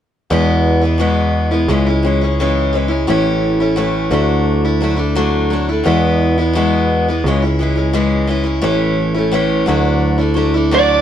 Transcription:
0.30 E2 B2 E3 G#3 B3 E4
0.81 E3 G#3 B3 E4
0.98 E2 B2 E3 G#3 B3 E4
1.51 E3 G#3 B3 E4
1.68 C#2 C#3 E3 G#3 C#4 E4
1.86 G#3 C#4 E4
2.03 E3 G#3 C#4 E4
2.21 G#3 C#4 E4
2.40 C#3 E3 G#3 C#4 E4
2.73 E3 G#3 C#4 E4
2.88 G#3 C#4 E4
3.07 A1 A2 E3 A3 C#4 E4
3.60 A3 C#4 E4
3.76 A2 E3 A3 C#4 E4
4.11 D2 D3 F#3 A3 D4 E4
4.65 A3 D4 E4
4.80 F#3 A3 D4 E4
4.96 A3 D4 E4
5.15 D3 F#3 A3 D4 E4
5.50 F#3 A3 D4 E4
5.69 A3 D4 E4
5.84 E2 B2 E3 G#3 B3 E4
6.38 E3 G#3 B3 E4
6.53 E2 B2 E3 G#3 B3 E4
7.08 E3 G#3 B3 E4
7.24 C#2 C#3 E3 G#3 C#4
7.28 E4
7.42 C#4 E4
7.47 G#3
7.59 E3 G#3 C#4 E4
7.76 G#3 C#4 E4
7.93 C#3 E3 G#3 C#4 E4
8.27 E3 G#3 C#4 E4
8.44 G#3 C#4 E4
8.61 A1 A2 E3 A3 C#4 E4
9.14 C#4 E4
9.19 A3
9.32 A2 E3 A3 C#4 E4
9.66 D2 D3 F#3 A3 D4 E4
10.18 A3 D4 E4
10.34 F#3 A3 D4 E4
10.54 A3 D4 E4
10.71 D3 F#3 A3 D4 E4 D5

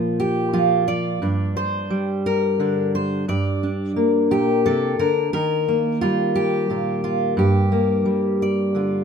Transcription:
Already playing: A#2 F3 F4
0.20 G4
0.53 F3 F4
0.88 D5
1.22 G2 D4
1.57 C5
1.90 G3
2.26 A#4
2.60 D3 D4
2.95 C5
3.28 G2 D5
3.63 D4
3.96 A#3
4.31 A#2 G4
4.66 C3 A4
4.99 D3 A#4
5.33 D#3 A#4
5.68 A#3
6.01 G3 F4
6.36 G4
6.70 A#2 F4
7.04 F4
7.37 G2 G4
7.72 A#3
8.05 G3
8.42 D5
8.75 D3 F4

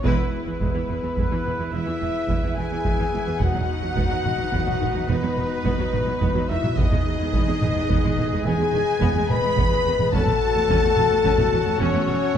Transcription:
0.03 E1 E2 G#3 B3 E4 G#4 B4 E5, taiko
0.08 B3
0.19 E2 E3
0.46 E2 E3
0.61 E1 E2 G#3, taiko
0.75 E2 E3
0.89 E1 E2 E3
1.03 E2 E3
1.17 E1 E2 G#3, taiko
1.31 E2 E3
1.45 E1 E2 E3
1.59 E2 E3
1.72 E1 E2 G#3 E4 E5
1.86 E2 E3
2.00 E1 E2 E3
2.28 E1 E2 G#3, taiko
2.42 E2 E3
2.56 E1 E2 E3 G#4 G#5
2.71 E2 E3
2.84 E1 E2 G#3, taiko
2.99 E2 E3
3.12 E1 E2 E3
3.27 E2 E3
3.40 E1 E2 B3 D#4 F#4 B4 D#5 F#5, taiko
3.54 E2 F#3, taiko mid
3.82 E2 F#3
3.95 E1 E2 B3, taiko
4.09 E2 F#3
4.23 E1 E2 D#3, taiko mid
4.38 E2 F#3
4.52 E1 E2 B3, taiko
4.66 E2 F#3, taiko mid
4.80 E1 E2 D#3, taiko mid
4.94 E2 F#3
5.08 E1 E2 B3 B4
5.22 E2 F#3
5.36 E1 E2 D#3
5.64 E1 E2 B3, taiko
5.78 E2 F#3
5.93 E1 E2 D#3, taiko mid
6.06 E2 F#3
6.21 E1 E2 B3, taiko
6.34 E2 F#3
6.48 E1 E2 D#3 E4 E5
6.62 E2 F#3, taiko mid
6.76 E1 E2 B3 D#4 G#4 B4 D#5, taiko
6.91 E2 G#3, taiko mid
7.19 E2 G#3
7.33 E1 E2 B3, taiko
7.47 E2 G#3
7.61 E1 E2 D#3, taiko mid
7.76 E2 G#3
7.88 E1 E2 B3, taiko
8.03 E2 G#3, taiko mid
8.17 E1 E2 D#3, taiko mid
8.31 E2 G#3
8.44 E1 E2 B3 G#4 G#5
8.58 E2 G#3
8.73 E1 E2 D#3
9.00 E1 E2 B3, taiko
9.14 E2
9.18 G#3
9.28 E1 E2 D#3 B4 B5, taiko mid
9.42 E2 G#3
9.57 E1 E2 B3, taiko
9.70 E2 G#3
9.85 E1 E2 D#3
9.99 E2 G#3, taiko mid
10.12 E1 E2 C#4 F#4 A4 F#5 A5, taiko
10.26 E2 A3, taiko mid
10.54 E2 A3
10.68 E1 E2 C#4, taiko
10.83 E2 A3
10.96 E1 E2 F#3, taiko mid
11.09 E2 A3
11.24 E1 E2 C#4, taiko
11.38 E2 A3, taiko mid
11.52 E1 E2 F#3, taiko mid
11.66 E2 A3
11.79 E1 E2 C#4 C#5
11.93 E2 A3
12.07 E1 E2 F#3
12.34 E2

